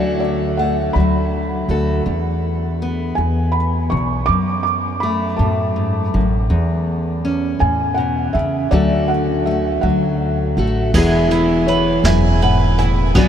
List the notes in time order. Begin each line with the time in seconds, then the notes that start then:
Already playing: D2 D3 F#3 A3 F#4 A4 D5
0.20 D5
0.57 A3 F#5
0.93 D2 F#3 B5
1.69 D2 A3 F#4 A4
2.06 E2
2.82 B3
3.15 E2 G#5
3.52 B5
3.90 B1 E2 C#6
4.26 F#2 D6
4.63 D6
5.00 A3 B5
5.37 F#2 A2 A5
5.76 G#2
6.14 A1 F#2
6.50 E2
7.25 C#4
7.59 E2 A2 G#5
7.94 B2 F#5
8.33 E2 C#3 E5
8.71 D2 D3 F#3 A3 F#4 A4 D5
9.08 F#5
9.46 A3 E5
9.81 D2 F#3 F#5
10.57 A1 A3 F#4 A4
10.94 E1 E2 E3 G#3 B3 E4 G#4 G#5, kick, crash
11.31 E3 E4, closed hi-hat
11.67 B3 B4 C#5, closed hi-hat
12.04 E1 F#2 E5 G#5, snare, closed hi-hat
12.41 G#2 B4 F#5, closed hi-hat
12.78 A2 E4 G#5, closed hi-hat
13.15 B1 B2 F#3 B3 D4 F#4 B4 F#5, kick, closed hi-hat